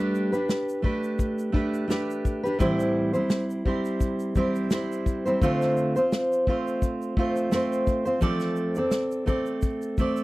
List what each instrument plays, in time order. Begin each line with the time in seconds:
Already playing: steel-string acoustic guitar G3 A3 D4 G4 B4
0.15 shaker
0.32 steel-string acoustic guitar D4 G4 B4, shaker
0.49 snare, shaker
0.69 shaker
0.82 steel-string acoustic guitar A3 D4 G4 B4, kick
1.03 shaker
1.19 kick, shaker
1.39 shaker
1.52 steel-string acoustic guitar A3 D4 G4 B4, kick
1.74 shaker
1.88 steel-string acoustic guitar A3 D4 G4 B4, snare, shaker
2.10 shaker
2.25 kick, shaker
2.43 steel-string acoustic guitar D4 G4 B4, shaker
2.59 steel-string acoustic guitar A2 E3 G3 C4 E4 C5, kick, shaker
2.80 shaker
3.13 steel-string acoustic guitar G3 C4 E4 C5, shaker
3.30 snare, shaker
3.50 shaker
3.65 steel-string acoustic guitar G3 C4 E4 C5, kick
3.85 shaker
4.01 kick, shaker
4.19 shaker
4.35 steel-string acoustic guitar G3 C4 E4 C5, kick, shaker
4.55 shaker
4.70 steel-string acoustic guitar G3 C4 E4 C5, snare, shaker
4.92 shaker
5.06 kick, shaker
5.25 steel-string acoustic guitar G3 C4 E4 C5, shaker
5.42 steel-string acoustic guitar D3 A3 C4 F4 C5, kick, shaker
5.61 snare, shaker
5.77 shaker
5.96 steel-string acoustic guitar C4 F4 C5, shaker
6.12 snare, shaker
6.33 shaker
6.47 steel-string acoustic guitar A3 C4 F4 C5, kick
6.67 shaker
6.82 kick, shaker
7.02 shaker
7.17 steel-string acoustic guitar A3 C4 F4 C5, kick
7.36 shaker
7.51 steel-string acoustic guitar A3 C4 F4 C5, snare, shaker
7.73 shaker
7.87 kick, shaker
8.05 steel-string acoustic guitar C4 F4 C5, shaker
8.21 steel-string acoustic guitar F3 A3 C4 A4 D5, kick, shaker
8.40 snare, shaker
8.56 shaker
8.75 steel-string acoustic guitar C4 A4 D5, shaker
8.91 snare, shaker
9.11 shaker
9.26 steel-string acoustic guitar A3 C4 A4 D5, kick, shaker
9.46 shaker
9.62 kick, shaker
9.82 shaker
9.98 steel-string acoustic guitar A3 C4 A4 D5, kick, shaker
10.16 shaker